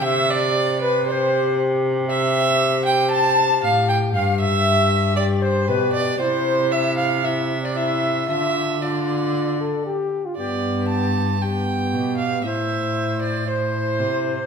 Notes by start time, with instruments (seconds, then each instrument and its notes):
0.02 cello C3, trombone G4, recorder E5, violin E5
0.30 recorder D5, violin D5
0.82 violin B4, recorder B4
1.06 trombone G4, violin C5, recorder D5
1.12 recorder C5
2.08 trombone G4, recorder E5, violin E5
2.86 violin G5, recorder G5
3.11 recorder A5, violin A5
3.62 cello A2, recorder F5, violin F5
3.89 recorder G5, violin G5
4.13 cello G2, trombone G4, recorder F5, violin F5
4.41 recorder E5, violin E5
5.16 trombone G4, recorder D5, violin D5
5.42 recorder C5, violin C5
5.68 cello B2, trombone G4, violin B4, recorder B4
5.93 recorder D5, violin D5
6.19 cello C3, trombone E4, recorder C5, violin C5
6.71 recorder E5, violin E5
6.97 recorder F5, violin F5
7.22 trombone E4, recorder E5, violin E5
7.62 recorder D5, violin D5
7.74 trombone E4, recorder E5, violin E5
8.27 cello D3, trombone F4, recorder E5, violin E5
8.80 trombone F4, recorder D5, violin D5
9.61 trombone A4
9.86 trombone G4
10.26 trombone F4
10.37 cello G2, trombone B3, recorder G4, violin D5
10.89 violin A5
11.42 trombone B3, recorder G4, violin G5
11.93 cello B2
12.18 violin F5
12.45 cello A2, trombone E4, recorder C5, violin E5
13.23 violin D5
13.47 trombone E4, recorder C5, violin C5
13.99 cello C3